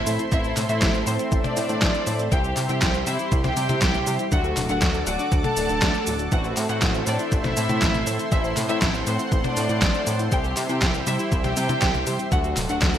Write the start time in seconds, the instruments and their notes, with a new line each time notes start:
Already playing: analog polysynth A3 C4 E4 C5, violin section E4 E5, analog synth pad A4 C5 E5 C6, impact
0.07 analog synth bass A2, synth arpeggio sound A3, open hi-hat, cabasa
0.19 synth arpeggio sound E4, closed hi-hat, cabasa
0.32 analog synth bass A1, analog polysynth A3 C4 E4 C5, synth arpeggio sound E4, violin section E4 E5, kick, closed hi-hat, cabasa
0.44 synth arpeggio sound C5, closed hi-hat, cabasa
0.57 analog synth bass A2, synth arpeggio sound A3, clap, open hi-hat, high tom, cabasa
0.69 analog synth bass A2, analog polysynth A3 C4 E4 C5, violin section E4 E5, synth arpeggio sound E4, closed hi-hat, cabasa
0.82 analog synth bass A1, synth arpeggio sound E4, kick, snare, clap, closed hi-hat, cabasa
0.94 synth arpeggio sound C5, closed hi-hat, cabasa
1.07 analog synth bass A2, synth arpeggio sound A3, violin section C4 C5, open hi-hat, cabasa
1.19 synth arpeggio sound E4, closed hi-hat, cabasa
1.32 analog synth bass A1, synth arpeggio sound E4, kick, closed hi-hat, cabasa
1.44 violin section D4 D5, synth arpeggio sound C5, closed hi-hat, high tom, cabasa
1.57 analog synth bass A2, analog polysynth A3 C4 E4 C5, synth arpeggio sound A3, open hi-hat, cabasa
1.69 analog synth bass A2, synth arpeggio sound E4, closed hi-hat, cabasa
1.82 analog synth bass A1, synth arpeggio sound E4, kick, snare, clap, closed hi-hat, cabasa
1.94 synth arpeggio sound C5, closed hi-hat, cabasa
2.07 analog synth bass A2, synth arpeggio sound A3, open hi-hat, cabasa
2.19 synth arpeggio sound E4, closed hi-hat, cabasa
2.32 analog synth bass C2, analog polysynth G3 C4 E4 C5, synth arpeggio sound E4, analog synth pad G4 C6, violin section G4 G5, kick, closed hi-hat, cabasa
2.44 synth arpeggio sound C5, closed hi-hat, cabasa
2.57 analog synth bass C3, synth arpeggio sound G3, clap, open hi-hat, cabasa
2.69 analog synth bass C3, analog polysynth G3 C4 E4 C5, synth arpeggio sound E4, violin section G4 G5, closed hi-hat, cabasa
2.82 analog synth bass C2, synth arpeggio sound E4, kick, snare, clap, closed hi-hat, cabasa
2.94 synth arpeggio sound C5, closed hi-hat, cabasa
3.07 analog synth bass C3, synth arpeggio sound G3, violin section E4 E5, open hi-hat, cabasa
3.19 synth arpeggio sound E4, closed hi-hat, cabasa
3.32 analog synth bass C2, synth arpeggio sound E4, kick, closed hi-hat, cabasa
3.44 violin section G4 G5, synth arpeggio sound C5, snare, closed hi-hat, high tom, cabasa
3.57 analog synth bass C3, analog polysynth G3 C4 E4 C5, synth arpeggio sound G3, open hi-hat, cabasa
3.69 analog synth bass C3, synth arpeggio sound E4, closed hi-hat, high tom, cabasa
3.82 analog synth bass C2, synth arpeggio sound E4, kick, snare, clap, closed hi-hat, cabasa
3.94 synth arpeggio sound C5, closed hi-hat, high tom, cabasa
4.07 analog synth bass C3, synth arpeggio sound G3, open hi-hat, cabasa
4.19 synth arpeggio sound E4, closed hi-hat, cabasa
4.32 analog synth bass D2, analog polysynth F#3 A3 D4 A4, synth arpeggio sound D4, violin section F#4 F#5, analog synth pad A4 D5 F#5 D6, kick, closed hi-hat, cabasa
4.44 synth arpeggio sound A4, closed hi-hat, cabasa
4.57 analog synth bass D1, synth arpeggio sound F#3, clap, open hi-hat, high tom, cabasa
4.69 analog synth bass D1, analog polysynth F#3 A3 D4 A4, synth arpeggio sound D4, violin section F#4 F#5, closed hi-hat, cabasa
4.82 analog synth bass D2, synth arpeggio sound D4, kick, snare, clap, closed hi-hat, cabasa
4.94 synth arpeggio sound A4, closed hi-hat, cabasa
5.07 analog synth bass D1, synth arpeggio sound F#3, violin section F#4 F#5, open hi-hat, cabasa
5.19 synth arpeggio sound D4, closed hi-hat, cabasa
5.32 analog synth bass D2, synth arpeggio sound D4, kick, closed hi-hat, cabasa
5.44 violin section A4 A5, synth arpeggio sound A4, closed hi-hat, high tom, cabasa
5.57 analog synth bass D1, analog polysynth F#3 A3 D4 A4, synth arpeggio sound F#3, open hi-hat, cabasa
5.69 analog synth bass D1, synth arpeggio sound D4, closed hi-hat, cabasa
5.82 analog synth bass D2, synth arpeggio sound D4, kick, snare, clap, closed hi-hat, cabasa
5.94 synth arpeggio sound A4, closed hi-hat, cabasa
6.07 analog synth bass D1, synth arpeggio sound F#3, open hi-hat, cabasa
6.19 synth arpeggio sound D4, closed hi-hat, cabasa
6.32 analog synth bass A1, analog polysynth A3 C4 E4 C5, synth arpeggio sound E4, violin section F#4 F#5, analog synth pad C5 E5 C6, kick, closed hi-hat, cabasa
6.44 synth arpeggio sound C5, closed hi-hat, cabasa
6.57 analog synth bass A2, synth arpeggio sound A3, clap, open hi-hat, cabasa
6.69 analog synth bass A2, analog polysynth A3 C4 E4 C5, synth arpeggio sound E4, violin section F#4 F#5, closed hi-hat, cabasa
6.82 analog synth bass A1, synth arpeggio sound E4, kick, snare, clap, closed hi-hat, cabasa
6.94 synth arpeggio sound C5, closed hi-hat, cabasa
7.07 analog synth bass A2, synth arpeggio sound A3, violin section D4 D5, open hi-hat, cabasa
7.19 synth arpeggio sound E4, closed hi-hat, cabasa
7.32 analog synth bass A1, synth arpeggio sound E4, kick, closed hi-hat, cabasa
7.44 violin section E4 E5, synth arpeggio sound C5, snare, closed hi-hat, high tom, cabasa
7.57 analog synth bass A2, synth arpeggio sound A3, analog polysynth A3 C4 E4 C5, open hi-hat, cabasa
7.69 analog synth bass A2, synth arpeggio sound E4, closed hi-hat, high tom, cabasa
7.82 analog synth bass A1, synth arpeggio sound E4, kick, snare, clap, closed hi-hat, cabasa
7.94 synth arpeggio sound C5, closed hi-hat, high tom, cabasa
8.07 analog synth bass A2, synth arpeggio sound A3, open hi-hat, cabasa
8.19 synth arpeggio sound E4, closed hi-hat, cabasa
8.32 analog synth bass A1, analog polysynth A3 C4 E4 C5, synth arpeggio sound E4, violin section E4 E5, analog synth pad F#5, kick, closed hi-hat, cabasa
8.44 synth arpeggio sound C5, closed hi-hat, cabasa
8.57 analog synth bass A2, synth arpeggio sound A3, clap, open hi-hat, high tom, cabasa
8.69 analog synth bass A2, analog polysynth A3 C4 E4 C5, violin section E4 E5, synth arpeggio sound E4, closed hi-hat, cabasa
8.82 analog synth bass A1, synth arpeggio sound E4, kick, snare, clap, closed hi-hat, cabasa
8.94 synth arpeggio sound C5, closed hi-hat, cabasa
9.07 analog synth bass A2, synth arpeggio sound A3, violin section C4 C5, open hi-hat, cabasa
9.19 synth arpeggio sound E4, closed hi-hat, cabasa
9.32 analog synth bass A1, synth arpeggio sound E4, kick, closed hi-hat, cabasa
9.44 violin section D4 D5, synth arpeggio sound C5, closed hi-hat, high tom, cabasa
9.57 analog synth bass A2, analog polysynth A3 C4 E4 C5, synth arpeggio sound A3, open hi-hat, cabasa
9.69 analog synth bass A2, synth arpeggio sound E4, closed hi-hat, cabasa
9.82 analog synth bass A1, synth arpeggio sound E4, kick, snare, clap, closed hi-hat, cabasa
9.94 synth arpeggio sound C5, closed hi-hat, cabasa
10.07 analog synth bass A2, synth arpeggio sound A3, open hi-hat, cabasa
10.19 synth arpeggio sound E4, closed hi-hat, cabasa
10.32 analog synth bass C2, analog polysynth G3 C4 E4 C5, synth arpeggio sound E4, analog synth pad G4 E5, violin section G4 G5, kick, closed hi-hat, cabasa
10.44 synth arpeggio sound C5, closed hi-hat, cabasa
10.57 analog synth bass C3, synth arpeggio sound G3, clap, open hi-hat, cabasa
10.69 analog synth bass C3, analog polysynth G3 C4 E4 C5, synth arpeggio sound E4, violin section G4 G5, closed hi-hat, cabasa
10.82 analog synth bass C2, synth arpeggio sound E4, kick, snare, clap, closed hi-hat, cabasa
10.94 synth arpeggio sound C5, closed hi-hat, cabasa
11.07 analog synth bass C3, synth arpeggio sound G3, violin section E4 E5, open hi-hat, cabasa
11.19 synth arpeggio sound E4, closed hi-hat, cabasa
11.32 analog synth bass C2, synth arpeggio sound E4, kick, closed hi-hat, cabasa
11.44 violin section G4 G5, synth arpeggio sound C5, snare, closed hi-hat, high tom, cabasa
11.57 analog synth bass C3, analog polysynth G3 C4 E4 C5, synth arpeggio sound G3, open hi-hat, cabasa
11.69 analog synth bass C3, synth arpeggio sound E4, closed hi-hat, high tom, cabasa
11.82 analog synth bass C2, synth arpeggio sound E4, kick, snare, clap, closed hi-hat, cabasa
11.94 synth arpeggio sound C5, closed hi-hat, high tom, cabasa
12.07 analog synth bass C3, synth arpeggio sound G3, open hi-hat, cabasa
12.19 synth arpeggio sound E4, closed hi-hat, cabasa
12.32 analog synth bass D2, analog polysynth F#3 A3 D4 A4, synth arpeggio sound D4, violin section F#4 F#5, analog synth pad A4 D5 F#5 D6, kick, closed hi-hat, cabasa
12.44 synth arpeggio sound A4, closed hi-hat, cabasa
12.57 analog synth bass D1, synth arpeggio sound F#3, clap, open hi-hat, high tom, cabasa
12.69 analog synth bass D1, analog polysynth F#3 A3 D4 A4, synth arpeggio sound D4, violin section F#4 F#5, closed hi-hat, cabasa
12.82 analog synth bass D2, synth arpeggio sound D4, kick, snare, clap, closed hi-hat, cabasa
12.94 synth arpeggio sound A4, closed hi-hat, cabasa